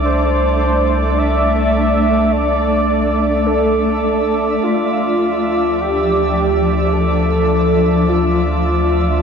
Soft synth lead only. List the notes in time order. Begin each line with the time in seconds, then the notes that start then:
0.05 C5
1.18 E5
2.32 D5
3.46 A4
4.64 F4
5.81 G4
6.93 A4
8.09 F4